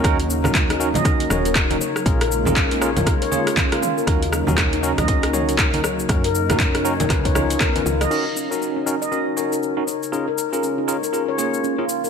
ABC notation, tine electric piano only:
X:1
M:4/4
L:1/16
Q:"Swing 16ths" 1/4=119
K:Ebm
V:1 name="Tine electric piano"
[DEGB] z2 [DEGB]3 [DEGB] z [DEGB]2 [DEGd]3 [DEGB] z2 | [DFAB] z2 [DFAB]3 [DFAB] z [DFAB]2 [DFAd]3 [DFAB] z2 | [DEGB] z2 [DEGB]3 [DEGB] z [DEGB]2 [DEGd]3 [DEGB] z2 | [DEGB] z2 [DEGB]3 [DEGB] z [DEFc]2 [DEFd]3 [DEFc] z2 |
[DEGB] z2 [DEGB]3 [DEGB] z [DEGB]2 [DEGd]3 [DEGB] z2 | [DFAB] z2 [DFAB]3 [DFAB] z [DFAB]2 [DFAd]3 [DFAB] z2 |]